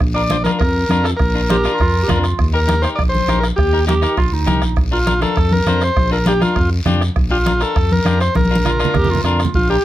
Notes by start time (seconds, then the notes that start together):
0.00 A#1, bombo low, bombo rim, high conga
0.14 D4 F4 A#4 D5
0.30 D4 F4 C5, bombo rim, high conga, short guiro
0.44 D4 F4 A#4, bombo rim, high conga, short guiro
0.59 F2 A#4, bombo low, bombo rim, high conga, long guiro
0.89 F2 D4 F4 A#4, bombo rim, high conga, short guiro
1.04 A4, bombo rim, short guiro
1.17 A#1 A#4, bombo low, bombo rim, high conga, long guiro
1.35 D4 F4 A#4
1.50 D4 F4 G4 C5, bombo rim, high conga, short guiro
1.64 D4 F4 A#4, bombo rim, short guiro
1.74 F4
1.78 F2 F4, bombo low, bombo rim, high conga, long guiro
2.03 G4
2.08 F2 D4 F4 A#4, bombo low, bombo rim, high conga, low conga, short guiro
2.24 bombo rim, short guiro
2.39 D#2, bombo low, bombo rim, high conga, long guiro
2.53 D#4 G4 A#4
2.68 D#4 G4 A#4, bombo rim, high conga, short guiro
2.82 D#4 G4 A#4 C5, bombo rim, short guiro
2.96 A#1 D5, bombo low, bombo rim, high conga, long guiro
3.09 C5
3.15 high conga
3.28 A#1 D#4 G4 A#4, bombo rim, high conga, short guiro
3.40 A#4, bombo rim, short guiro
3.56 D#2 G4, bombo low, bombo rim, high conga, long guiro
3.73 D#4 G4 A#4
3.87 D#4 G4 A#4, bombo rim, high conga, short guiro
4.02 D#4 G4 A#4, bombo rim, short guiro
4.17 A#1 F4, bombo low, bombo rim, high conga, long guiro
4.32 D2 D#4
4.46 C2 D#4 G4 A#4, bombo low, bombo rim, high conga, low conga, short guiro
4.62 A#1, bombo rim, short guiro
4.76 A#1, bombo low, bombo rim, high conga, long guiro
4.91 D4 F4 A#4
5.06 D4 F4 A#4, bombo rim, high conga, short guiro
5.21 D4 F4 A4 A#4, bombo rim, high conga, short guiro
5.36 F2, bombo low, bombo rim, high conga, long guiro
5.51 A#4, high conga
5.66 F2 D4 F4 C5, bombo rim, high conga, short guiro
5.81 C5, bombo rim, short guiro
5.96 A#1, bombo low, bombo rim, high conga, long guiro
6.11 D4 F4 A4 A#4
6.26 D4 F4 G4 A#4, bombo rim, high conga, short guiro
6.41 D4 F4 A#4, bombo rim, high conga, short guiro
6.56 F2, bombo low, bombo rim, high conga, long guiro
6.86 F2 D4 F4 G4, bombo rim, high conga, low conga, short guiro
7.01 bombo rim, short guiro
7.16 A#1, bombo low, bombo rim, high conga, long guiro
7.30 D4 F4 G4
7.46 D4 F4 A#4, bombo rim, high conga, short guiro
7.60 D4 F4 A4 A#4, bombo rim, short guiro
7.76 F2, bombo low, bombo rim, high conga, long guiro
7.91 A#4, high conga
8.05 F2 D4 F4 G4, bombo rim, high conga, short guiro
8.20 C5, bombo rim, short guiro
8.35 A#1 A#4, bombo low, bombo rim, high conga, long guiro
8.45 high conga
8.51 D4 F4 A#4
8.56 high conga
8.65 D4 F4 A#4, bombo rim, low conga, short guiro
8.79 D4 F4 A#4, bombo rim, short guiro
8.85 low conga
8.94 F2 G4, bombo low, bombo rim, low conga, long guiro
9.05 low conga
9.11 F4
9.15 low conga
9.24 F2 D4 F4 A#4, bombo rim, short guiro
9.39 bombo rim, short guiro
9.45 low conga
9.54 A#1 F4, bombo low, high conga, long guiro
9.70 D4 F4 G4 A#4